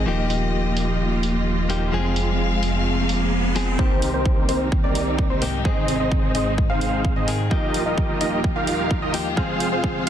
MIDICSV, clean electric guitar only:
0, 0, Header, 1, 2, 480
1, 0, Start_track
1, 0, Key_signature, -3, "minor"
1, 0, Tempo, 465116
1, 71, Time_signature, 4, 2, 24, 8
1, 10415, End_track
2, 0, Start_track
2, 0, Title_t, "Clean electric guitar"
2, 0, Program_c, 0, 27
2, 59, Note_on_c, 0, 53, 94
2, 67, Note_on_c, 0, 58, 83
2, 75, Note_on_c, 0, 63, 84
2, 84, Note_on_c, 0, 67, 103
2, 1716, Note_off_c, 0, 53, 0
2, 1720, Note_off_c, 0, 58, 0
2, 1724, Note_off_c, 0, 63, 0
2, 1729, Note_off_c, 0, 67, 0
2, 1745, Note_on_c, 0, 53, 68
2, 1747, Note_on_c, 0, 58, 60
2, 1757, Note_on_c, 0, 63, 51
2, 1757, Note_on_c, 0, 67, 71
2, 1959, Note_off_c, 0, 53, 0
2, 1961, Note_off_c, 0, 58, 0
2, 1963, Note_off_c, 0, 63, 0
2, 1966, Note_off_c, 0, 67, 0
2, 1979, Note_on_c, 0, 53, 90
2, 1987, Note_on_c, 0, 56, 85
2, 1995, Note_on_c, 0, 60, 84
2, 2004, Note_on_c, 0, 68, 100
2, 3636, Note_off_c, 0, 53, 0
2, 3640, Note_off_c, 0, 56, 0
2, 3645, Note_off_c, 0, 60, 0
2, 3649, Note_off_c, 0, 68, 0
2, 3665, Note_on_c, 0, 53, 66
2, 3668, Note_on_c, 0, 56, 59
2, 3677, Note_on_c, 0, 60, 56
2, 3677, Note_on_c, 0, 68, 75
2, 3879, Note_off_c, 0, 53, 0
2, 3881, Note_off_c, 0, 56, 0
2, 3883, Note_off_c, 0, 60, 0
2, 3885, Note_off_c, 0, 68, 0
2, 3898, Note_on_c, 0, 51, 93
2, 3907, Note_on_c, 0, 58, 84
2, 3915, Note_on_c, 0, 60, 82
2, 3923, Note_on_c, 0, 67, 100
2, 5556, Note_off_c, 0, 51, 0
2, 5560, Note_off_c, 0, 58, 0
2, 5564, Note_off_c, 0, 60, 0
2, 5568, Note_off_c, 0, 67, 0
2, 5583, Note_on_c, 0, 44, 73
2, 5590, Note_on_c, 0, 58, 58
2, 5592, Note_on_c, 0, 51, 62
2, 5597, Note_on_c, 0, 60, 50
2, 5598, Note_on_c, 0, 67, 73
2, 5799, Note_off_c, 0, 44, 0
2, 5801, Note_off_c, 0, 51, 0
2, 5803, Note_off_c, 0, 58, 0
2, 5804, Note_off_c, 0, 60, 0
2, 5806, Note_off_c, 0, 67, 0
2, 5819, Note_on_c, 0, 44, 91
2, 5825, Note_on_c, 0, 51, 87
2, 5831, Note_on_c, 0, 56, 86
2, 5837, Note_on_c, 0, 60, 87
2, 5843, Note_on_c, 0, 68, 103
2, 7476, Note_off_c, 0, 44, 0
2, 7479, Note_off_c, 0, 51, 0
2, 7482, Note_off_c, 0, 56, 0
2, 7486, Note_off_c, 0, 60, 0
2, 7489, Note_off_c, 0, 68, 0
2, 7505, Note_on_c, 0, 51, 78
2, 7513, Note_on_c, 0, 56, 52
2, 7513, Note_on_c, 0, 60, 64
2, 7518, Note_on_c, 0, 68, 75
2, 7720, Note_off_c, 0, 51, 0
2, 7722, Note_off_c, 0, 56, 0
2, 7723, Note_off_c, 0, 60, 0
2, 7726, Note_off_c, 0, 68, 0
2, 7739, Note_on_c, 0, 53, 96
2, 7747, Note_on_c, 0, 58, 88
2, 7755, Note_on_c, 0, 63, 88
2, 7764, Note_on_c, 0, 67, 109
2, 9396, Note_off_c, 0, 53, 0
2, 9400, Note_off_c, 0, 58, 0
2, 9405, Note_off_c, 0, 63, 0
2, 9409, Note_off_c, 0, 67, 0
2, 9422, Note_on_c, 0, 53, 68
2, 9432, Note_on_c, 0, 58, 53
2, 9433, Note_on_c, 0, 63, 65
2, 9438, Note_on_c, 0, 67, 79
2, 9640, Note_off_c, 0, 53, 0
2, 9641, Note_off_c, 0, 58, 0
2, 9644, Note_off_c, 0, 63, 0
2, 9646, Note_off_c, 0, 67, 0
2, 9660, Note_on_c, 0, 53, 98
2, 9667, Note_on_c, 0, 56, 92
2, 9676, Note_on_c, 0, 60, 88
2, 9684, Note_on_c, 0, 68, 109
2, 10415, Note_off_c, 0, 53, 0
2, 10415, Note_off_c, 0, 56, 0
2, 10415, Note_off_c, 0, 60, 0
2, 10415, Note_off_c, 0, 68, 0
2, 10415, End_track
0, 0, End_of_file